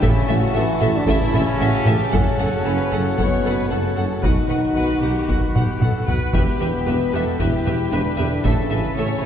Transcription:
Already playing: pipe organ E4 E5
0.01 double bass section A1, tuba A1, cello section A2, trombone section C#3, pipe organ A3 A5, french horn section C#4, violin section E4 E5, viola section A4, taiko
0.28 double bass section A1, tuba A1, cello section A2, violin section F#4 E5, viola section A4
0.54 tuba A1, double bass section A1, cello section A2, trombone section E3, french horn section E4, viola section A4, violin section E5
0.81 tuba A1, double bass section A1, cello section A2, viola section A4, violin section E5, taiko mid
0.92 trombone section D3, french horn section D4
1.06 tuba A1, double bass section A1, cello section A2, trombone section C#3, french horn section C#4, violin section E4 E5, viola section A4, taiko
1.33 tuba A1, double bass section A1, cello section A2, viola section A4, violin section E5, taiko mid
1.60 tuba A1, double bass section A1, cello section A2, violin section F#4 E5, viola section A4
1.86 tuba A1, double bass section A1, cello section A2, violin section G4 E5, viola section A4, taiko mid
2.11 double bass section F#1, tuba F#1, cello section F#2, trombone section C#3, french horn section C#4, pipe organ F#4 C#5 F#5, violin section A4 F#5, viola section A4, taiko
2.39 tuba F#1, double bass section F#1, cello section F#2, viola section A4, violin section F#5
2.65 double bass section F#1, tuba F#1, cello section F#2, viola section A4, violin section B4 F#5
2.91 tuba F#1, double bass section F#1, cello section F#2, viola section A4, violin section A4 F#5
3.17 double bass section F#1, tuba F#1, cello section F#2, trombone section B2, french horn section B3, viola section A4, violin section C#5 F#5, taiko
3.44 tuba F#1, double bass section F#1, cello section F#2, viola section A4, violin section B4 F#5
3.70 double bass section F#1, tuba F#1, cello section F#2, trombone section C#3, french horn section C#4, violin section A4 F#5, viola section A4
3.96 double bass section F#1, tuba F#1, cello section F#2, viola section A4, violin section F#5
4.22 double bass section B1, tuba B1, cello section B2, timpani B2, trombone section D#3, pipe organ B3 B4, french horn section D#4, viola section F#4 B4, violin section F#4 F#5, taiko
4.49 double bass section B1, tuba B1, cello section B2, viola section F#4 B4, violin section F#5
4.75 double bass section B1, tuba B1, cello section B2, viola section B4, violin section F#5
5.02 double bass section B1, tuba B1, cello section B2, viola section G4, violin section F#5
5.28 tuba B1, double bass section B1, cello section B2, viola section F#4, violin section F#5, taiko
5.55 double bass section B1, tuba B1, cello section B2, viola section G4, violin section F#5, taiko mid
5.81 tuba B1, double bass section B1, cello section B2, viola section A4, violin section F#5, taiko mid
6.07 tuba B1, double bass section B1, cello section B2, viola section B4, violin section F#5, taiko low
6.33 tuba E1, double bass section E1, cello section E2, trombone section B2, french horn section B3, pipe organ E4 G5, viola section G4 B4, violin section G4 E5, taiko
6.60 tuba E1, double bass section E1, cello section E2, viola section G4 B4, violin section E5
6.86 double bass section E1, tuba E1, cello section E2, viola section G4 B4, violin section B4 E5
7.13 tuba E1, double bass section E1, cello section E2, viola section G4 B4, violin section A4 E5
7.38 tuba E1, double bass section E1, cello section E2, trombone section E3, french horn section E4, viola section G4 B4, violin section G4 E5, taiko
7.66 double bass section E1, tuba E1, cello section E2, viola section G4 B4, violin section E5
7.91 double bass section E1, tuba E1, cello section E2, trombone section D3, french horn section D4, viola section G4 B4, violin section B4 E5
8.17 tuba E1, double bass section E1, cello section E2, viola section G4 B4, violin section E5
8.43 tuba A1, double bass section A1, cello section A2, trombone section C#3, pipe organ A3 E5 A5, french horn section C#4, viola section A4, violin section A4 E5, taiko
8.70 double bass section A1, tuba A1, cello section A2, viola section A4, violin section B4 E5
8.97 double bass section A1, tuba A1, cello section A2, viola section A4, violin section C#5 E5
9.22 violin section B4

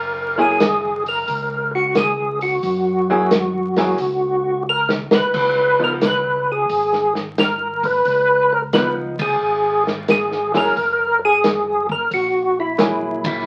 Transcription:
Already playing: tonewheel organ F#1 A#4
0.38 hollow-body jazz guitar F#3 A#3 E4 G#4, tonewheel organ G#4
0.60 snare, closed hi-hat
1.06 tonewheel organ A#4, open hi-hat
1.28 tonewheel organ C#2, kick, open hi-hat
1.75 tonewheel organ F#4
1.95 tonewheel organ G#4, snare, closed hi-hat
2.41 tonewheel organ F#4, open hi-hat
2.63 tonewheel organ F#2, kick, open hi-hat
3.10 hollow-body jazz guitar F#3 A#3 E4 G#4
3.31 snare, closed hi-hat
3.76 hollow-body jazz guitar F#3 A#3 E4 G#4, snare, open hi-hat
3.98 tonewheel organ C#2, kick, open hi-hat
4.69 tonewheel organ A#4
4.89 snare
5.11 tonewheel organ C#2 B4, snare
5.34 tonewheel organ C#2, kick, crash
5.79 hollow-body jazz guitar F3 B3 D#4
5.84 tonewheel organ A#4
6.01 snare, closed hi-hat
6.06 tonewheel organ B4
6.52 tonewheel organ G#4
6.69 tonewheel organ G#1, kick, open hi-hat
6.93 snare
7.15 snare
7.38 tonewheel organ A#4, snare, closed hi-hat
7.83 tonewheel organ B4, kick, open hi-hat
8.05 tonewheel organ C#2, kick, open hi-hat
8.52 tonewheel organ A#4
8.73 hollow-body jazz guitar F3 B3 D#4, tonewheel organ B4, snare, closed hi-hat
9.19 tonewheel organ G#4, kick, ride
9.41 tonewheel organ G#1
9.87 snare
10.08 tonewheel organ G#4, snare, closed hi-hat
10.32 snare
10.54 hollow-body jazz guitar F#3 A#3 E4 G#4, tonewheel organ A#4, snare, open hi-hat
10.76 tonewheel organ F#1, kick, open hi-hat
11.25 tonewheel organ G#4
11.44 snare, closed hi-hat
11.89 tonewheel organ A#4, kick
12.11 tonewheel organ A#1 F#4, kick, open hi-hat
12.60 tonewheel organ E4
12.78 hollow-body jazz guitar F#3 A#3 E4 G#4, snare, closed hi-hat
13.24 tonewheel organ E4, kick, ride

